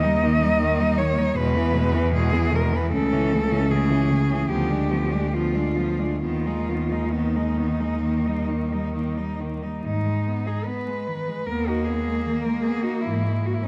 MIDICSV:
0, 0, Header, 1, 5, 480
1, 0, Start_track
1, 0, Key_signature, 5, "minor"
1, 0, Tempo, 764331
1, 858, Tempo, 786370
1, 1811, Time_signature, 4, 2, 24, 8
1, 2778, Tempo, 831025
1, 3258, Tempo, 898204
1, 5658, Tempo, 819672
1, 6618, Tempo, 782269
1, 7971, End_track
2, 0, Start_track
2, 0, Title_t, "Cello"
2, 0, Program_c, 0, 42
2, 0, Note_on_c, 0, 75, 119
2, 617, Note_on_c, 0, 73, 104
2, 626, Note_off_c, 0, 75, 0
2, 855, Note_on_c, 0, 71, 106
2, 865, Note_off_c, 0, 73, 0
2, 1327, Note_off_c, 0, 71, 0
2, 1331, Note_on_c, 0, 68, 106
2, 1581, Note_on_c, 0, 70, 95
2, 1590, Note_off_c, 0, 68, 0
2, 1709, Note_on_c, 0, 71, 84
2, 1718, Note_off_c, 0, 70, 0
2, 1803, Note_off_c, 0, 71, 0
2, 1806, Note_on_c, 0, 69, 100
2, 2289, Note_on_c, 0, 68, 101
2, 2298, Note_off_c, 0, 69, 0
2, 2769, Note_on_c, 0, 67, 83
2, 2778, Note_off_c, 0, 68, 0
2, 3254, Note_on_c, 0, 65, 85
2, 3262, Note_off_c, 0, 67, 0
2, 3723, Note_off_c, 0, 65, 0
2, 3726, Note_on_c, 0, 65, 80
2, 4207, Note_on_c, 0, 63, 63
2, 4215, Note_off_c, 0, 65, 0
2, 5419, Note_off_c, 0, 63, 0
2, 5657, Note_on_c, 0, 63, 75
2, 6030, Note_on_c, 0, 68, 70
2, 6039, Note_off_c, 0, 63, 0
2, 6134, Note_on_c, 0, 71, 81
2, 6142, Note_off_c, 0, 68, 0
2, 6613, Note_on_c, 0, 70, 80
2, 6622, Note_off_c, 0, 71, 0
2, 6745, Note_on_c, 0, 66, 69
2, 6754, Note_off_c, 0, 70, 0
2, 6848, Note_on_c, 0, 68, 74
2, 6858, Note_off_c, 0, 66, 0
2, 7209, Note_off_c, 0, 68, 0
2, 7214, Note_on_c, 0, 70, 67
2, 7327, Note_off_c, 0, 70, 0
2, 7331, Note_on_c, 0, 68, 69
2, 7449, Note_on_c, 0, 66, 70
2, 7458, Note_off_c, 0, 68, 0
2, 7563, Note_on_c, 0, 64, 73
2, 7572, Note_off_c, 0, 66, 0
2, 7838, Note_on_c, 0, 66, 66
2, 7847, Note_off_c, 0, 64, 0
2, 7889, Note_on_c, 0, 64, 64
2, 7898, Note_off_c, 0, 66, 0
2, 7948, Note_on_c, 0, 63, 58
2, 7957, Note_off_c, 0, 64, 0
2, 7971, Note_off_c, 0, 63, 0
2, 7971, End_track
3, 0, Start_track
3, 0, Title_t, "Cello"
3, 0, Program_c, 1, 42
3, 17, Note_on_c, 1, 63, 69
3, 144, Note_on_c, 1, 58, 69
3, 153, Note_off_c, 1, 63, 0
3, 259, Note_on_c, 1, 63, 71
3, 268, Note_off_c, 1, 58, 0
3, 372, Note_off_c, 1, 63, 0
3, 376, Note_on_c, 1, 58, 71
3, 499, Note_on_c, 1, 63, 66
3, 509, Note_off_c, 1, 58, 0
3, 617, Note_on_c, 1, 58, 71
3, 626, Note_off_c, 1, 63, 0
3, 734, Note_on_c, 1, 63, 65
3, 743, Note_off_c, 1, 58, 0
3, 850, Note_off_c, 1, 63, 0
3, 854, Note_on_c, 1, 56, 72
3, 979, Note_on_c, 1, 59, 71
3, 988, Note_off_c, 1, 56, 0
3, 1091, Note_on_c, 1, 56, 70
3, 1100, Note_off_c, 1, 59, 0
3, 1207, Note_on_c, 1, 59, 63
3, 1216, Note_off_c, 1, 56, 0
3, 1319, Note_off_c, 1, 59, 0
3, 1323, Note_on_c, 1, 56, 73
3, 1444, Note_on_c, 1, 59, 65
3, 1453, Note_off_c, 1, 56, 0
3, 1565, Note_on_c, 1, 56, 64
3, 1574, Note_off_c, 1, 59, 0
3, 1692, Note_on_c, 1, 59, 59
3, 1702, Note_off_c, 1, 56, 0
3, 1810, Note_off_c, 1, 59, 0
3, 1814, Note_on_c, 1, 57, 70
3, 1933, Note_on_c, 1, 61, 63
3, 1942, Note_off_c, 1, 57, 0
3, 2053, Note_on_c, 1, 57, 68
3, 2062, Note_off_c, 1, 61, 0
3, 2175, Note_on_c, 1, 61, 61
3, 2184, Note_off_c, 1, 57, 0
3, 2281, Note_off_c, 1, 61, 0
3, 2285, Note_on_c, 1, 57, 63
3, 2410, Note_on_c, 1, 61, 60
3, 2419, Note_off_c, 1, 57, 0
3, 2528, Note_on_c, 1, 57, 57
3, 2537, Note_off_c, 1, 61, 0
3, 2647, Note_on_c, 1, 61, 58
3, 2656, Note_off_c, 1, 57, 0
3, 2764, Note_off_c, 1, 61, 0
3, 2767, Note_on_c, 1, 59, 57
3, 2887, Note_on_c, 1, 62, 54
3, 2895, Note_off_c, 1, 59, 0
3, 3004, Note_on_c, 1, 59, 54
3, 3012, Note_off_c, 1, 62, 0
3, 3120, Note_on_c, 1, 62, 52
3, 3129, Note_off_c, 1, 59, 0
3, 3249, Note_off_c, 1, 62, 0
3, 3252, Note_on_c, 1, 59, 58
3, 3363, Note_on_c, 1, 62, 51
3, 3371, Note_off_c, 1, 59, 0
3, 3479, Note_on_c, 1, 59, 49
3, 3487, Note_off_c, 1, 62, 0
3, 3605, Note_on_c, 1, 62, 46
3, 3613, Note_off_c, 1, 59, 0
3, 3721, Note_off_c, 1, 62, 0
3, 3724, Note_on_c, 1, 59, 49
3, 3852, Note_on_c, 1, 63, 46
3, 3860, Note_off_c, 1, 59, 0
3, 3974, Note_on_c, 1, 59, 52
3, 3982, Note_off_c, 1, 63, 0
3, 4100, Note_on_c, 1, 63, 50
3, 4108, Note_off_c, 1, 59, 0
3, 4208, Note_off_c, 1, 63, 0
3, 4211, Note_on_c, 1, 59, 49
3, 4335, Note_on_c, 1, 63, 45
3, 4343, Note_off_c, 1, 59, 0
3, 4452, Note_on_c, 1, 59, 46
3, 4460, Note_off_c, 1, 63, 0
3, 4571, Note_on_c, 1, 63, 43
3, 4579, Note_off_c, 1, 59, 0
3, 4692, Note_off_c, 1, 63, 0
3, 4695, Note_on_c, 1, 58, 45
3, 4813, Note_on_c, 1, 63, 48
3, 4821, Note_off_c, 1, 58, 0
3, 4940, Note_on_c, 1, 58, 46
3, 4948, Note_off_c, 1, 63, 0
3, 5062, Note_on_c, 1, 63, 48
3, 5070, Note_off_c, 1, 58, 0
3, 5179, Note_off_c, 1, 63, 0
3, 5182, Note_on_c, 1, 58, 49
3, 5305, Note_on_c, 1, 63, 42
3, 5313, Note_off_c, 1, 58, 0
3, 5427, Note_on_c, 1, 58, 48
3, 5435, Note_off_c, 1, 63, 0
3, 5546, Note_on_c, 1, 63, 43
3, 5554, Note_off_c, 1, 58, 0
3, 5659, Note_off_c, 1, 63, 0
3, 5663, Note_on_c, 1, 51, 53
3, 5786, Note_on_c, 1, 56, 47
3, 5794, Note_off_c, 1, 51, 0
3, 5911, Note_on_c, 1, 59, 54
3, 5919, Note_off_c, 1, 56, 0
3, 6026, Note_on_c, 1, 63, 50
3, 6035, Note_off_c, 1, 59, 0
3, 6141, Note_on_c, 1, 59, 54
3, 6149, Note_off_c, 1, 63, 0
3, 6263, Note_on_c, 1, 56, 49
3, 6271, Note_off_c, 1, 59, 0
3, 6382, Note_on_c, 1, 51, 53
3, 6391, Note_off_c, 1, 56, 0
3, 6503, Note_on_c, 1, 56, 49
3, 6512, Note_off_c, 1, 51, 0
3, 6615, Note_off_c, 1, 56, 0
3, 6619, Note_on_c, 1, 59, 51
3, 6739, Note_on_c, 1, 63, 54
3, 6749, Note_off_c, 1, 59, 0
3, 6864, Note_on_c, 1, 59, 51
3, 6873, Note_off_c, 1, 63, 0
3, 6979, Note_on_c, 1, 56, 51
3, 6988, Note_off_c, 1, 59, 0
3, 7095, Note_on_c, 1, 51, 56
3, 7105, Note_off_c, 1, 56, 0
3, 7217, Note_on_c, 1, 56, 49
3, 7226, Note_off_c, 1, 51, 0
3, 7331, Note_on_c, 1, 59, 50
3, 7340, Note_off_c, 1, 56, 0
3, 7453, Note_on_c, 1, 63, 48
3, 7462, Note_off_c, 1, 59, 0
3, 7574, Note_off_c, 1, 63, 0
3, 7581, Note_on_c, 1, 52, 52
3, 7696, Note_on_c, 1, 56, 45
3, 7706, Note_off_c, 1, 52, 0
3, 7821, Note_on_c, 1, 58, 52
3, 7830, Note_off_c, 1, 56, 0
3, 7937, Note_on_c, 1, 61, 51
3, 7946, Note_off_c, 1, 58, 0
3, 7971, Note_off_c, 1, 61, 0
3, 7971, End_track
4, 0, Start_track
4, 0, Title_t, "Cello"
4, 0, Program_c, 2, 42
4, 23, Note_on_c, 2, 55, 70
4, 144, Note_on_c, 2, 51, 66
4, 154, Note_off_c, 2, 55, 0
4, 269, Note_on_c, 2, 55, 65
4, 279, Note_off_c, 2, 51, 0
4, 377, Note_off_c, 2, 55, 0
4, 381, Note_on_c, 2, 51, 72
4, 501, Note_on_c, 2, 55, 69
4, 510, Note_off_c, 2, 51, 0
4, 625, Note_on_c, 2, 51, 68
4, 634, Note_off_c, 2, 55, 0
4, 740, Note_on_c, 2, 55, 64
4, 749, Note_off_c, 2, 51, 0
4, 854, Note_off_c, 2, 55, 0
4, 857, Note_on_c, 2, 47, 75
4, 981, Note_on_c, 2, 52, 67
4, 990, Note_off_c, 2, 47, 0
4, 1092, Note_on_c, 2, 47, 69
4, 1101, Note_off_c, 2, 52, 0
4, 1212, Note_on_c, 2, 52, 69
4, 1221, Note_off_c, 2, 47, 0
4, 1329, Note_off_c, 2, 52, 0
4, 1333, Note_on_c, 2, 47, 68
4, 1452, Note_on_c, 2, 52, 63
4, 1461, Note_off_c, 2, 47, 0
4, 1569, Note_on_c, 2, 47, 63
4, 1578, Note_off_c, 2, 52, 0
4, 1691, Note_on_c, 2, 52, 62
4, 1700, Note_off_c, 2, 47, 0
4, 1804, Note_off_c, 2, 52, 0
4, 1807, Note_on_c, 2, 49, 70
4, 1932, Note_on_c, 2, 52, 63
4, 1941, Note_off_c, 2, 49, 0
4, 2054, Note_on_c, 2, 49, 56
4, 2063, Note_off_c, 2, 52, 0
4, 2170, Note_on_c, 2, 52, 62
4, 2179, Note_off_c, 2, 49, 0
4, 2289, Note_off_c, 2, 52, 0
4, 2293, Note_on_c, 2, 49, 69
4, 2403, Note_on_c, 2, 52, 59
4, 2412, Note_off_c, 2, 49, 0
4, 2527, Note_on_c, 2, 49, 55
4, 2536, Note_off_c, 2, 52, 0
4, 2658, Note_on_c, 2, 52, 54
4, 2667, Note_off_c, 2, 49, 0
4, 2771, Note_off_c, 2, 52, 0
4, 2775, Note_on_c, 2, 53, 63
4, 2892, Note_on_c, 2, 56, 55
4, 2901, Note_off_c, 2, 53, 0
4, 3010, Note_on_c, 2, 53, 53
4, 3018, Note_off_c, 2, 56, 0
4, 3135, Note_on_c, 2, 56, 53
4, 3144, Note_off_c, 2, 53, 0
4, 3255, Note_off_c, 2, 56, 0
4, 3259, Note_on_c, 2, 53, 52
4, 3373, Note_on_c, 2, 56, 47
4, 3381, Note_off_c, 2, 53, 0
4, 3484, Note_on_c, 2, 53, 49
4, 3492, Note_off_c, 2, 56, 0
4, 3604, Note_on_c, 2, 56, 45
4, 3612, Note_off_c, 2, 53, 0
4, 3728, Note_off_c, 2, 56, 0
4, 3731, Note_on_c, 2, 51, 58
4, 3858, Note_on_c, 2, 56, 49
4, 3866, Note_off_c, 2, 51, 0
4, 3978, Note_on_c, 2, 51, 46
4, 3986, Note_off_c, 2, 56, 0
4, 4101, Note_on_c, 2, 56, 45
4, 4109, Note_off_c, 2, 51, 0
4, 4217, Note_off_c, 2, 56, 0
4, 4220, Note_on_c, 2, 51, 49
4, 4335, Note_on_c, 2, 56, 46
4, 4343, Note_off_c, 2, 51, 0
4, 4448, Note_on_c, 2, 51, 47
4, 4456, Note_off_c, 2, 56, 0
4, 4572, Note_on_c, 2, 56, 46
4, 4580, Note_off_c, 2, 51, 0
4, 4691, Note_off_c, 2, 56, 0
4, 4695, Note_on_c, 2, 51, 50
4, 4816, Note_on_c, 2, 55, 48
4, 4824, Note_off_c, 2, 51, 0
4, 4935, Note_on_c, 2, 51, 45
4, 4943, Note_off_c, 2, 55, 0
4, 5061, Note_on_c, 2, 55, 47
4, 5069, Note_off_c, 2, 51, 0
4, 5180, Note_off_c, 2, 55, 0
4, 5183, Note_on_c, 2, 51, 49
4, 5306, Note_on_c, 2, 55, 43
4, 5314, Note_off_c, 2, 51, 0
4, 5428, Note_on_c, 2, 51, 46
4, 5436, Note_off_c, 2, 55, 0
4, 5547, Note_on_c, 2, 55, 44
4, 5555, Note_off_c, 2, 51, 0
4, 5660, Note_off_c, 2, 55, 0
4, 6620, Note_on_c, 2, 58, 78
4, 7971, Note_off_c, 2, 58, 0
4, 7971, End_track
5, 0, Start_track
5, 0, Title_t, "Cello"
5, 0, Program_c, 3, 42
5, 0, Note_on_c, 3, 39, 83
5, 859, Note_off_c, 3, 39, 0
5, 862, Note_on_c, 3, 40, 84
5, 1818, Note_on_c, 3, 37, 87
5, 1827, Note_off_c, 3, 40, 0
5, 2780, Note_off_c, 3, 37, 0
5, 2783, Note_on_c, 3, 38, 70
5, 3735, Note_on_c, 3, 39, 61
5, 3743, Note_off_c, 3, 38, 0
5, 5544, Note_off_c, 3, 39, 0
5, 5659, Note_on_c, 3, 44, 64
5, 6065, Note_off_c, 3, 44, 0
5, 6624, Note_on_c, 3, 39, 64
5, 7022, Note_off_c, 3, 39, 0
5, 7580, Note_on_c, 3, 44, 65
5, 7971, Note_off_c, 3, 44, 0
5, 7971, End_track
0, 0, End_of_file